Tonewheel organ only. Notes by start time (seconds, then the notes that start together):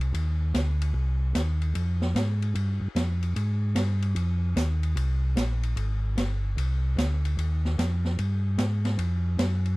Already playing: C2
0.14 D#2
0.54 D2
0.94 C2
1.35 D#2
1.75 F2
2.15 G#2
2.55 G2
2.81 G2
2.95 F2
3.36 G#2
3.75 G2
4.15 F2
4.56 D#2
4.96 C2
5.36 A#1
5.76 G#1
6.17 G1
6.57 C2
6.97 D2
7.37 D#2
7.78 F2
8.19 G2
8.58 G#2
8.98 F2
9.38 F#2